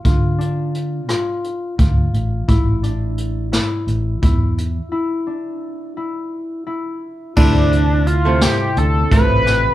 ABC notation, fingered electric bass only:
X:1
M:7/8
L:1/8
Q:1/4=86
K:Ddor
V:1 name="Fingered electric bass" clef=bass
D,4 z D,, A,,, | A,,,4 A,,, E,,2 | z6 z | D,,4 D,, A,,,2 |]